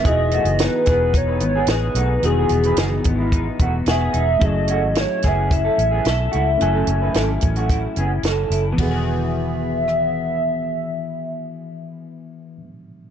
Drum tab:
RD |----------------|----------------|----------------|----------------|
HH |x-xxx-x-x-x-x-x-|x-xxx-x-x-x-x-x-|x-x-x-x-x-x-x-x-|x-x-x-xxx-x-x-x-|
SD |----o-o-----o---|----o-------o---|----o-o-----o---|----o-------o---|
BD |o-----o-o-------|------o-o-o-----|o-----o-o-------|------o-o-------|

RD |x---------------|----------------|
HH |----------------|----------------|
SD |--------r-------|----------------|
BD |o---------------|----------------|